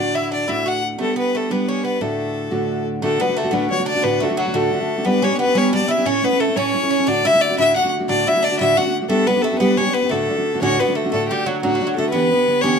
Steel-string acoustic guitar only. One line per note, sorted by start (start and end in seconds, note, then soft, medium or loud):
0.00 0.48 D2 medium
0.00 0.48 A2 medium
0.00 0.49 D3 medium
0.00 0.47 A3 medium
0.00 0.48 D4 medium
0.00 0.47 F#4 medium
0.48 1.00 D2 medium
0.48 1.00 A2 medium
0.48 0.98 D3 medium
0.48 0.99 A3 medium
0.48 0.98 D4 medium
0.48 0.99 F#4 medium
0.98 1.50 G3 medium
0.98 1.49 B3 medium
0.98 1.49 D4 soft
0.98 1.48 G4 medium
1.49 2.01 G3 soft
1.49 2.01 B3 soft
1.49 2.01 D4 medium
1.49 2.01 G4 medium
2.01 2.51 D2 medium
2.01 2.51 A2 medium
2.01 2.51 D3 medium
2.01 2.51 A3 medium
2.01 2.51 D4 medium
2.01 2.50 F#4 medium
2.51 3.01 D2 medium
2.51 3.02 A2 medium
2.51 3.03 D3 medium
2.51 3.03 A3 medium
2.51 3.03 D4 medium
2.51 3.04 F#4 medium
3.02 3.20 D2 medium
3.02 3.21 A2 medium
3.02 3.19 D3 medium
3.02 3.20 A3 medium
3.02 3.19 D4 medium
3.02 3.21 F#4 medium
3.20 3.28 D3 medium
3.20 3.27 A3 medium
3.20 3.28 D4 medium
3.20 3.27 F#4 medium
3.28 3.44 D3 soft
3.28 3.43 A3 soft
3.28 3.44 D4 soft
3.28 3.42 F#4 soft
3.44 3.51 D3 soft
3.44 3.52 A3 soft
3.44 3.51 D4 soft
3.44 3.52 F#4 medium
3.52 3.70 D2 medium
3.52 3.71 A2 medium
3.52 3.69 D3 medium
3.52 3.70 A3 medium
3.52 3.70 D4 medium
3.52 3.71 F#4 medium
3.70 3.79 D3 medium
3.70 3.78 A3 medium
3.70 3.78 D4 medium
3.70 3.77 F#4 medium
3.78 3.96 D3 soft
3.78 3.94 A3 soft
3.78 3.95 D4 soft
3.78 3.94 F#4 soft
3.95 4.03 D3 soft
3.95 4.03 A3 soft
3.95 4.03 D4 soft
3.95 4.04 F#4 soft
4.03 4.22 D2 medium
4.03 4.22 A2 medium
4.03 4.20 D3 medium
4.03 4.22 A3 medium
4.03 4.21 D4 medium
4.03 4.22 F#4 medium
4.22 4.30 D3 medium
4.22 4.29 A3 medium
4.22 4.29 D4 medium
4.22 4.28 F#4 medium
4.30 4.47 D3 soft
4.30 4.46 A3 medium
4.30 4.46 D4 soft
4.30 4.45 F#4 medium
4.46 4.53 D3 soft
4.46 4.53 A3 soft
4.46 4.53 D4 soft
4.46 4.54 F#4 soft
4.53 4.72 D2 medium
4.53 4.72 A2 medium
4.53 4.71 D3 medium
4.53 4.73 A3 medium
4.53 4.72 D4 medium
4.53 4.73 F#4 medium
4.72 4.81 D3 medium
4.72 4.80 A3 medium
4.72 4.81 D4 medium
4.72 4.79 F#4 medium
4.80 4.98 D3 soft
4.80 4.96 A3 soft
4.80 4.97 D4 soft
4.80 4.96 F#4 medium
4.97 5.05 D3 soft
4.97 5.05 A3 medium
4.97 5.05 D4 soft
4.97 5.05 F#4 soft
5.05 5.21 G3 medium
5.05 5.22 B3 medium
5.05 5.23 D4 medium
5.05 5.23 G4 medium
5.23 5.31 G3 medium
5.23 5.31 B3 medium
5.23 5.31 D4 medium
5.23 5.30 G4 medium
5.31 5.47 B3 soft
5.31 5.46 D4 soft
5.31 5.45 G4 medium
5.46 5.54 B3 soft
5.46 5.54 D4 soft
5.46 5.55 G4 medium
5.55 5.72 G3 medium
5.55 5.73 B3 medium
5.55 5.73 D4 medium
5.55 5.73 G4 medium
5.73 5.81 G3 medium
5.73 5.81 B3 medium
5.73 5.80 D4 medium
5.73 5.79 G4 medium
5.81 5.98 B3 soft
5.81 5.97 D4 soft
5.81 5.96 G4 soft
5.97 6.06 B3 soft
5.97 6.06 D4 soft
5.97 6.06 G4 medium
6.06 6.24 A2 medium
6.06 6.22 A3 medium
6.06 6.22 C#4 medium
6.06 6.23 E4 medium
6.06 6.24 A4 medium
6.23 6.32 A3 medium
6.23 6.32 C#4 medium
6.23 6.31 E4 medium
6.23 6.30 A4 medium
6.32 6.48 C#4 soft
6.32 6.47 E4 soft
6.32 6.46 A4 soft
6.48 6.55 C#4 soft
6.48 6.55 E4 soft
6.48 6.55 A4 soft
6.56 6.74 A2 medium
6.56 6.73 A3 medium
6.56 6.73 C#4 medium
6.56 6.74 E4 medium
6.56 6.75 A4 medium
6.74 6.83 A3 soft
6.74 6.83 C#4 medium
6.74 6.82 E4 medium
6.74 6.81 A4 medium
6.82 6.99 C#4 soft
6.82 6.98 E4 soft
6.82 6.97 A4 medium
6.98 7.07 C#4 soft
6.98 7.07 E4 soft
6.98 7.07 A4 soft
7.07 7.25 D2 medium
7.07 7.25 A2 medium
7.07 7.23 D3 medium
7.07 7.24 A3 medium
7.07 7.24 D4 medium
7.07 7.25 F#4 medium
7.24 7.33 D3 medium
7.24 7.33 A3 medium
7.24 7.33 D4 medium
7.24 7.32 F#4 medium
7.34 7.50 D3 soft
7.34 7.49 A3 soft
7.34 7.49 D4 soft
7.49 7.57 D3 soft
7.49 7.57 A3 soft
7.49 7.57 D4 soft
7.49 7.58 F#4 soft
7.58 7.76 D2 medium
7.58 7.76 A2 medium
7.58 7.74 D3 medium
7.58 7.75 A3 medium
7.58 7.75 D4 medium
7.58 7.76 F#4 medium
7.75 7.84 D3 medium
7.75 7.83 A3 medium
7.75 7.83 D4 medium
7.75 7.82 F#4 medium
7.83 8.00 D3 soft
7.83 7.99 A3 soft
7.83 7.99 D4 soft
7.83 7.98 F#4 medium
7.99 8.08 D3 soft
7.99 8.08 A3 medium
7.99 8.08 D4 soft
7.99 8.08 F#4 medium
8.08 8.26 D2 medium
8.08 8.26 A2 medium
8.08 8.25 D3 medium
8.08 8.26 A3 medium
8.08 8.26 D4 medium
8.08 8.27 F#4 medium
8.26 8.35 D3 medium
8.26 8.35 A3 medium
8.26 8.35 D4 medium
8.26 8.34 F#4 medium
8.35 8.52 D3 soft
8.35 8.50 A3 soft
8.35 8.51 D4 soft
8.35 8.50 F#4 soft
8.51 8.59 D3 soft
8.51 8.59 A3 soft
8.51 8.59 D4 soft
8.51 8.59 F#4 medium
8.60 8.77 D2 medium
8.60 8.78 A2 medium
8.60 8.76 D3 medium
8.60 8.77 A3 medium
8.60 8.76 D4 medium
8.60 8.78 F#4 medium
8.77 8.85 D3 medium
8.77 8.85 A3 medium
8.77 8.86 D4 medium
8.77 8.84 F#4 medium
8.85 9.02 D3 soft
8.85 9.01 A3 soft
8.85 9.02 D4 soft
8.85 9.00 F#4 soft
9.01 9.09 D3 soft
9.01 9.09 A3 medium
9.01 9.09 D4 soft
9.01 9.10 F#4 medium
9.09 9.26 G3 medium
9.09 9.27 B3 medium
9.09 9.28 D4 medium
9.09 9.28 G4 medium
9.28 9.36 G3 medium
9.28 9.36 B3 medium
9.28 9.35 D4 medium
9.28 9.34 G4 medium
9.36 9.52 B3 soft
9.36 9.51 D4 soft
9.36 9.50 G4 medium
9.52 9.59 B3 soft
9.52 9.59 D4 soft
9.52 9.60 G4 medium
9.60 9.77 G3 medium
9.60 9.77 B3 medium
9.60 9.78 D4 medium
9.60 9.79 G4 medium
9.78 9.86 G3 medium
9.78 9.86 B3 medium
9.78 9.85 D4 medium
9.78 9.84 G4 medium
9.86 10.03 B3 soft
9.86 10.02 D4 soft
9.86 10.01 G4 medium
10.02 10.11 B3 soft
10.02 10.10 D4 soft
10.02 10.11 G4 medium
10.10 10.29 D2 medium
10.10 10.29 A2 medium
10.10 10.27 D3 medium
10.10 10.29 A3 medium
10.10 10.28 D4 medium
10.10 10.29 F#4 medium
10.29 10.37 D3 medium
10.29 10.36 A3 medium
10.29 10.37 D4 medium
10.29 10.36 F#4 medium
10.37 10.54 D3 soft
10.37 10.53 A3 soft
10.37 10.53 D4 soft
10.37 10.52 F#4 soft
10.54 10.60 D3 soft
10.54 10.61 A3 medium
10.54 10.61 D4 soft
10.54 10.61 F#4 medium
10.61 10.79 D2 medium
10.61 10.79 A2 medium
10.61 10.78 D3 medium
10.61 10.79 A3 loud
10.61 10.78 D4 medium
10.61 10.80 F#4 loud
10.79 10.87 D3 medium
10.79 10.87 A3 medium
10.79 10.87 D4 medium
10.79 10.86 F#4 medium
10.88 11.05 D3 soft
10.88 11.04 A3 soft
10.88 11.04 D4 soft
10.88 11.03 F#4 medium
11.04 11.12 D3 soft
11.04 11.12 A3 medium
11.04 11.12 D4 medium
11.04 11.12 F#4 medium
11.13 11.30 D2 medium
11.13 11.30 A2 medium
11.13 11.31 D3 medium
11.13 11.30 A3 medium
11.13 11.30 D4 medium
11.13 11.29 F#4 medium
11.30 11.45 D3 soft
11.30 11.46 A3 soft
11.30 11.46 D4 soft
11.30 11.46 F#4 soft
11.46 11.62 D3 medium
11.46 11.62 A3 medium
11.46 11.63 D4 medium
11.46 11.62 F#4 medium
11.63 11.81 D2 medium
11.63 11.81 A2 medium
11.63 11.80 D3 medium
11.63 11.81 A3 medium
11.63 11.80 D4 medium
11.63 11.81 F#4 medium
11.81 11.97 D3 medium
11.81 11.96 A3 medium
11.81 11.97 D4 medium
11.81 11.96 F#4 medium
11.97 12.13 D3 soft
11.97 12.13 A3 medium
11.97 12.13 D4 soft
11.97 12.13 F#4 soft
12.13 12.31 D2 medium
12.13 12.31 D3 medium
12.13 12.31 E3 medium
12.13 12.31 B3 medium
12.13 12.31 D4 medium
12.13 12.30 G4 medium
12.31 12.46 D3 soft
12.31 12.47 B3 soft
12.31 12.48 D4 soft
12.31 12.47 G4 soft
12.48 12.63 D3 medium
12.48 12.63 B3 medium
12.48 12.63 D4 medium
12.48 12.63 G4 medium
12.64 12.79 D2 medium
12.64 12.79 D3 medium
12.64 12.79 E3 medium
12.64 12.79 B3 medium
12.64 12.79 D4 medium
12.64 12.79 G4 medium